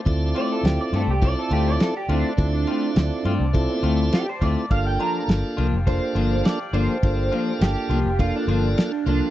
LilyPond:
<<
  \new Staff \with { instrumentName = "Horn section" } { \time 4/4 \key d \minor \tempo 4 = 103 <d'' a'' d'''>1~ | <d'' a'' d'''>1 | <g' f'' g''>1~ | <g' f'' g''>1 | }
  \new Staff \with { instrumentName = "Clean electric guitar" } { \time 4/4 \key d \minor r8 d''16 a'16 g'16 d''16 a'16 g'16 d''16 a'16 g'16 d''16 a'16 g'16 d'8~ | d'2~ d'8 r8 g'16 c''16 d''8 | f''16 g''16 bes''8 r4 c''4 d''8 c''8~ | c''4 g'4 f'16 d'4~ d'16 d'8 | }
  \new Staff \with { instrumentName = "Tonewheel organ" } { \time 4/4 \key d \minor <c' e' f' a'>4. r8 <c' e' f' a'>4~ <c' e' f' a'>16 r16 <c' e' f' a'>8 | <c' e' f' a'>4. r8 <c' e' f' a'>4~ <c' e' f' a'>16 r16 <c' e' f' a'>8 | <bes d' f' a'>4. r8 <bes d' f' a'>4~ <bes d' f' a'>16 r16 <bes d' f' a'>8 | <bes d' f' a'>4. r8 <bes d' f' a'>4~ <bes d' f' a'>16 r16 <bes d' f' a'>8 | }
  \new Staff \with { instrumentName = "Clean electric guitar" } { \time 4/4 \key d \minor r8 <a c' f'>8 r8 <a c' f'>8 r8 <a c' f'>8 r8 <a c' f'>8 | r8 <a c' f'>8 r8 <a c' f'>8 r8 <a c' f'>8 r8 <a c' f'>8 | r8 <f bes d' f'>8 r8 <f bes d' f'>8 r8 <f bes d' f'>8 r8 <f bes d' f'>8 | r8 <f bes d' f'>8 r8 <f bes d' f'>8 r8 <f bes d' f'>8 r8 <f bes d' f'>8 | }
  \new Staff \with { instrumentName = "Fingered electric bass" } { \clef bass \time 4/4 \key d \minor d,8 r8 d,16 r16 g,16 c,8 r16 d,8 r8 d,16 r16 | d,8 r8 d,16 r16 g,16 c,8 r16 d,8 r8 d,16 r16 | g,,8 r8 g,,16 r16 c,16 f,,8 r16 g,,8 r8 g,,16 r16 | g,,8 r8 g,,16 r16 c,16 f,,8 r16 g,,8 r8 c,16 r16 | }
  \new DrumStaff \with { instrumentName = "Drums" } \drummode { \time 4/4 <bd cymr>8 cymr8 <cymr sn>8 cymr8 <bd cymr>8 cymr8 <cymr sn>8 cymr8 | <bd cymr>8 cymr8 <cymr sn>8 cymr8 <bd cymr>8 cymr8 <cymr sn>8 <bd cymr>8 | <bd cymr>8 cymr8 <cymr sn>8 cymr8 <bd cymr>8 cymr8 <cymr sn>8 cymr8 | <bd cymr>8 cymr8 <cymr sn>8 cymr8 <bd cymr>8 cymr8 <cymr sn>8 cymr8 | }
>>